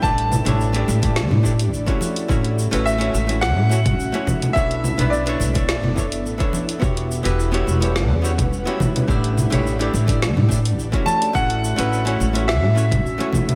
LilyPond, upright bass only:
\new Staff \with { instrumentName = "Upright bass" } { \clef bass \time 4/4 \key fis \phrygian \tempo 4 = 106 a,,8. a,,8. a,,8. a,8. a,,16 r8. | a,,8. a,,8. a,,8. a,8. a,,16 r8. | b,,8. b,,8. b,,8. fis,,8. a,,8. r16 | e,,8. e,,8. e,,8. e,8. e,,16 r8. |
a,,8. a,,8. a,,8. a,8. a,,16 r8. | a,,8. a,,8. a,,8. a,8. a,,16 r8. | }